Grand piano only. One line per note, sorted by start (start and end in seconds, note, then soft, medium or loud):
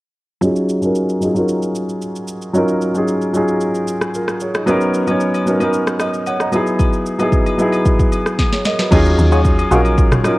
0.41 0.74 F#3 loud
0.41 0.74 C#4 loud
0.41 0.75 D#4 medium
0.41 0.75 F4 medium
0.41 0.76 G#4 loud
0.81 1.14 F#3 medium
0.81 1.14 C#4 medium
0.81 1.15 D#4 medium
0.81 1.15 F4 medium
0.81 1.16 A#4 medium
1.21 1.32 F#3 medium
1.21 1.33 C#4 medium
1.21 1.33 D#4 medium
1.21 1.34 F4 medium
1.25 1.34 G#4 medium
1.34 2.20 F#3 medium
1.34 2.20 C#4 medium
1.34 2.21 D#4 medium
1.34 2.21 F4 medium
1.38 2.22 A#4 medium
2.53 2.86 F#3 loud
2.53 2.87 C#4 medium
2.53 2.87 D#4 medium
2.53 2.88 F4 medium
2.57 2.88 A#4 loud
2.94 3.26 F#3 medium
2.94 3.27 C#4 medium
2.94 3.27 D#4 medium
2.94 3.28 F4 medium
2.94 3.28 G#4 medium
3.33 4.19 F#3 medium
3.33 4.19 C#4 medium
3.33 4.14 D#4 medium
3.33 4.14 F4 medium
3.33 4.15 G#4 medium
4.15 4.40 F4 medium
4.15 4.40 A#4 medium
4.41 4.54 G#4 medium
4.41 4.54 C#5 medium
4.55 4.67 D#4 medium
4.55 4.80 G#4 medium
4.66 4.99 F#3 loud
4.66 4.99 B3 loud
4.66 5.00 C#4 loud
4.66 5.00 D#4 medium
4.66 5.01 A#4 loud
5.06 5.38 F#3 medium
5.06 5.39 B3 medium
5.06 5.39 C#4 medium
5.06 5.40 D#4 medium
5.06 5.40 C#5 medium
5.45 5.57 F#3 medium
5.45 5.58 B3 medium
5.45 5.58 C#4 medium
5.45 5.59 D#4 medium
5.45 5.59 A#4 medium
5.59 6.45 F#3 medium
5.59 6.45 B3 medium
5.59 6.46 C#4 medium
5.59 6.46 D#4 medium
5.63 5.75 A#4 medium
6.01 6.26 A#4 medium
6.01 6.25 D#5 medium
6.27 6.40 C#5 medium
6.27 6.40 F#5 medium
6.41 6.66 D#5 medium
6.41 6.66 A#5 medium
6.52 7.05 F#3 medium
6.52 7.06 B3 medium
6.52 7.06 D#4 medium
6.52 7.07 E4 medium
6.56 7.07 G#4 loud
7.19 7.51 F#3 medium
7.19 7.51 B3 medium
7.19 7.52 D#4 medium
7.19 7.52 E4 medium
7.19 7.53 G#4 medium
7.58 8.44 F#3 medium
7.58 8.44 B3 medium
7.58 8.45 D#4 medium
7.58 8.45 E4 medium
7.58 8.40 G#4 medium
8.53 8.65 G#4 medium
8.53 8.65 C#5 medium
8.66 8.79 A#4 medium
8.66 8.79 D#5 medium
8.80 9.05 F#4 medium
8.80 9.05 B4 medium
8.91 9.55 F#3 loud
8.91 9.56 C#4 loud
8.91 9.56 D#4 loud
8.91 9.57 F4 loud
8.91 9.57 G#4 loud
9.70 10.14 F#3 medium
9.70 10.14 C#4 medium
9.70 10.15 D#4 medium
9.70 10.15 F4 medium
9.70 10.16 A#4 loud
10.23 10.39 F#3 medium
10.23 10.39 C#4 medium
10.23 10.39 D#4 medium
10.23 10.39 F4 medium
10.23 10.39 A#4 medium